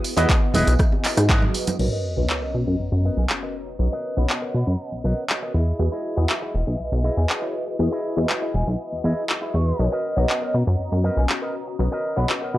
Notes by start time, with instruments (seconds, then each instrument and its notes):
Already playing: analog polysynth B3 E4 F#4 G#4 D#6
0.04 muted clean electric guitar stroke, open hi-hat, tambourine
0.16 analog synth bass E2, analog polysynth B3 E4 F#4 G#4 D#5, clean electric guitar E4 G#4 B4 D#5, closed hi-hat, tambourine
0.29 kick, clap, closed hi-hat, tambourine
0.54 analog synth bass E1, clean electric guitar E4 G#4 B4 D#5, open hi-hat, tambourine, high conga, low conga
0.67 analog synth bass B1, closed hi-hat, tambourine
0.79 kick, cross-stick, closed hi-hat, tambourine
0.92 muted clean electric guitar stroke, high conga
1.04 clap, open hi-hat, tambourine
1.17 analog synth bass G#2, muted clean electric guitar stroke, cross-stick, closed hi-hat, tambourine
1.29 clean electric guitar E4 G#4 B4 D#5, kick, clap, closed hi-hat, tambourine
1.42 low conga
1.54 muted clean electric guitar stroke, open hi-hat, tambourine
1.67 closed hi-hat, tambourine, low conga
1.79 analog synth bass B1, analog polysynth C#4 F#4 A#4 B4 D#5, crash, sub drop
1.92 clean electric guitar A#4 B4 D#5
2.16 analog synth bass B1, analog polysynth B3 C#4 F#4 D#5 A#5
2.30 clap
2.42 clean electric guitar A#4 B4 D#5
2.54 analog synth bass B2
2.67 analog synth bass F#2, muted clean electric guitar stroke
2.79 analog synth bass F#2
2.92 analog synth bass F#2
3.05 clean electric guitar A#4 B4 D#5
3.17 analog synth bass B1, flute G#5
3.30 clap
3.42 clean electric guitar A#4 B4 D#5
3.67 muted clean electric guitar stroke
3.79 analog synth bass B1, analog polysynth B3 C#4 F#4 D#5 A#5
3.92 clean electric guitar A#4 B4 D#5
4.16 analog synth bass B1, analog polysynth B3 C#4 F#4 D#5 F#5, flute B5
4.30 clap
4.42 clean electric guitar A#4 B4 D#5
4.54 analog synth bass B2, flute B5
4.67 analog synth bass F#2, muted clean electric guitar stroke
4.92 analog synth bass B1
5.04 analog synth bass B1, clean electric guitar A#4 B4 D#5
5.30 clap
5.42 clean electric guitar A#4 B4 D#5
5.54 analog synth bass E2, clean electric guitar E4 G#4 D#5
5.79 analog synth bass E2, analog polysynth E4 F#4 G#4 B4 D#5
5.92 clean electric guitar E4 G#4 D#5
6.16 analog synth bass E2, analog polysynth E4 F#4 G#4 B4 D#5
6.30 clap
6.42 clean electric guitar E4 G#4 D#5
6.54 analog synth bass E1
6.67 analog synth bass B1, muted clean electric guitar stroke
6.79 analog synth bass B1
6.92 analog synth bass B1
7.04 clean electric guitar E4 G#4 D#5
7.17 analog synth bass E2, flute G#5
7.30 clap
7.42 clean electric guitar E4 G#4 C#5
7.67 muted clean electric guitar stroke
7.79 analog synth bass E2, analog polysynth E4 F#4 G#4 B4 D#5
7.92 clean electric guitar E4 G#4 D#5
8.16 analog synth bass E2, analog polysynth E4 F#4 G#4 B4 D#5
8.30 clap
8.42 clean electric guitar E4 G#4 D#5
8.54 analog synth bass E1, flute G#5
8.67 analog synth bass B1, muted clean electric guitar stroke
8.92 analog synth bass E2
9.04 analog synth bass E2, clean electric guitar E4 G#4 D#5
9.29 clap
9.42 clean electric guitar E4 G#4 D#5
9.54 analog synth bass E2, flute C#6
9.67 muted clean electric guitar stroke
9.79 analog synth bass B1, analog polysynth C#4 F#4 A#4 B4 D#5
9.92 clean electric guitar A#4 B4 D#5
10.16 analog synth bass B1, analog polysynth B3 C#4 F#4 D#5 A#5
10.30 clap
10.42 clean electric guitar A#4 B4 D#5
10.54 analog synth bass B2
10.67 analog synth bass F#2, muted clean electric guitar stroke
10.92 analog synth bass F#2
11.04 clean electric guitar A#4 B4 D#5
11.17 analog synth bass B1, flute G#5
11.29 clap
11.42 clean electric guitar A#4 B4 D#5
11.67 muted clean electric guitar stroke
11.79 analog synth bass B1, analog polysynth B3 C#4 F#4 D#5 A#5
11.92 clean electric guitar A#4 B4 D#5
12.16 analog synth bass B1, analog polysynth B3 C#4 F#4 D#5 F#5, flute B5
12.30 clap
12.42 clean electric guitar A#4 B4 D#5
12.54 analog synth bass B2, flute B5